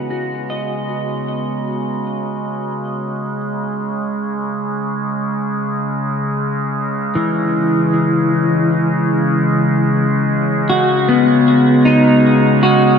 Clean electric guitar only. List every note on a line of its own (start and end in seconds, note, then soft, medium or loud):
0.00 0.43 E3 medium
0.00 2.47 B3 medium
0.00 0.27 G#4 soft
0.10 3.01 F#4 soft
0.50 3.40 D#5 medium
7.15 10.06 E3 medium
10.70 12.02 F#4 medium
11.09 12.99 B3 medium
11.85 12.80 D#4 medium
12.63 12.99 F#4 medium